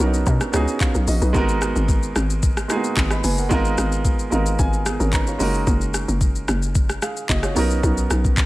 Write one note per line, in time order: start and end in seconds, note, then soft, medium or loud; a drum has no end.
0.00 0.25 B1 loud
0.00 0.52 B3 medium
0.00 0.53 C#4 medium
0.00 1.36 D4 medium
0.00 0.06 D#4 medium
0.00 0.55 F#4 medium
0.00 0.02 A#4 loud
0.00 0.44 A#4 medium
0.06 0.47 D#4 medium
0.14 shaker medium
0.26 0.40 B2 loud
0.26 kick loud
0.26 shaker medium
0.41 cross-stick medium
0.41 shaker medium
0.52 0.67 C#2 medium
0.52 0.96 B3 medium
0.52 0.97 C#4 medium
0.52 0.81 D#4 medium
0.52 0.81 F#4 medium
0.52 0.80 G#4 loud
0.52 cross-stick loud
0.52 shaker medium
0.68 shaker soft
0.81 1.07 G#4 medium
0.81 1.06 F5 medium
0.81 kick loud
0.81 clap loud
0.81 shaker medium
0.95 1.07 B1 medium
0.95 shaker medium
1.08 1.21 A#1 medium
1.08 1.21 F#4 medium
1.08 1.21 D#5 medium
1.08 open hi-hat medium
1.08 shaker medium
1.22 1.34 B1 medium
1.22 1.33 D#4 medium
1.22 1.48 B4 medium
1.22 shaker medium
1.33 1.73 G#1 loud
1.33 2.20 G#3 loud
1.33 2.21 B3 loud
1.33 2.21 D#4 loud
1.33 2.22 F#4 loud
1.33 2.22 A#4 loud
1.33 kick loud
1.33 shaker medium
1.49 shaker soft
1.62 cross-stick loud
1.62 shaker medium
1.76 2.13 G#1 medium
1.76 shaker medium
1.89 kick loud
1.89 shaker medium
2.03 shaker soft
2.16 2.67 G#1 loud
2.16 cross-stick loud
2.16 shaker medium
2.30 shaker medium
2.43 kick loud
2.43 shaker medium
2.57 cross-stick medium
2.57 shaker medium
2.68 3.13 G#3 medium
2.68 2.76 A#3 medium
2.68 3.14 D#4 medium
2.68 3.14 F#4 medium
2.68 3.15 G#4 loud
2.68 cross-stick loud
2.68 shaker medium
2.76 3.16 B3 medium
2.84 shaker soft
2.97 3.22 G#1 loud
2.97 kick loud
2.97 clap loud
2.97 shaker medium
3.11 3.24 D#5 medium
3.11 3.23 B5 medium
3.11 cross-stick loud
3.11 shaker medium
3.24 3.49 F#1 medium
3.24 3.38 B4 medium
3.24 3.37 G#5 medium
3.24 open hi-hat medium
3.24 shaker medium
3.38 3.52 A#4 medium
3.38 3.64 F#5 medium
3.38 shaker medium
3.49 3.76 G#1 loud
3.49 4.15 G#3 loud
3.49 4.16 B3 loud
3.49 4.16 D#4 loud
3.49 4.17 F4 loud
3.49 4.17 A#4 loud
3.49 kick loud
3.49 shaker medium
3.65 shaker medium
3.78 4.29 G#1 loud
3.78 cross-stick medium
3.78 shaker loud
3.92 shaker medium
4.05 kick loud
4.05 shaker medium
4.19 shaker soft
4.30 4.57 G#1 loud
4.30 4.75 G#3 medium
4.30 4.75 B3 medium
4.30 4.76 D#4 medium
4.30 4.76 F4 medium
4.30 4.77 A#4 medium
4.30 4.57 F5 medium
4.30 shaker medium
4.46 shaker medium
4.59 4.98 G#1 loud
4.59 4.84 G#5 medium
4.59 kick loud
4.59 shaker medium
4.73 shaker medium
4.86 5.00 B3 medium
4.86 5.00 G#4 medium
4.86 cross-stick loud
4.86 shaker medium
5.00 5.38 G#1 medium
5.00 5.13 C#4 medium
5.00 5.13 A#4 medium
5.00 shaker soft
5.13 5.27 D#4 medium
5.13 5.27 B4 medium
5.13 5.63 A#5 medium
5.13 kick loud
5.13 clap loud
5.13 shaker medium
5.27 5.53 F4 medium
5.27 5.53 C#5 medium
5.27 shaker medium
5.38 5.65 F#1 loud
5.38 6.26 G#3 medium
5.38 6.26 C#4 medium
5.38 6.27 D#4 medium
5.38 6.27 F#4 medium
5.38 6.28 A#4 loud
5.38 open hi-hat medium
5.38 shaker medium
5.54 shaker medium
5.67 6.06 F#1 loud
5.67 kick loud
5.67 shaker medium
5.81 shaker medium
5.94 cross-stick medium
5.94 shaker loud
6.08 6.46 F#1 medium
6.08 shaker medium
6.21 kick loud
6.21 shaker medium
6.35 shaker soft
6.48 6.99 F#1 loud
6.48 cross-stick loud
6.48 shaker medium
6.62 shaker medium
6.75 kick loud
6.75 shaker medium
6.89 cross-stick medium
6.89 shaker medium
7.02 7.28 G#4 medium
7.02 7.28 F5 medium
7.02 cross-stick loud
7.02 shaker medium
7.16 shaker soft
7.29 7.55 F#1 loud
7.29 7.43 F#4 medium
7.29 7.43 D#5 medium
7.29 kick medium
7.29 clap loud
7.29 shaker medium
7.43 7.69 F4 medium
7.43 7.69 C#5 medium
7.43 cross-stick loud
7.43 shaker medium
7.55 7.82 B1 loud
7.55 8.42 B3 medium
7.55 8.43 C#4 medium
7.55 8.43 D#4 medium
7.55 8.44 F#4 medium
7.55 8.44 A#4 loud
7.55 open hi-hat medium
7.55 shaker medium
7.70 shaker medium
7.83 8.09 B1 loud
7.83 kick loud
7.83 shaker medium
7.97 shaker medium
8.10 8.46 B1 loud
8.10 cross-stick medium
8.10 shaker medium
8.25 kick medium
8.25 shaker medium
8.37 kick loud
8.37 clap medium
8.37 shaker medium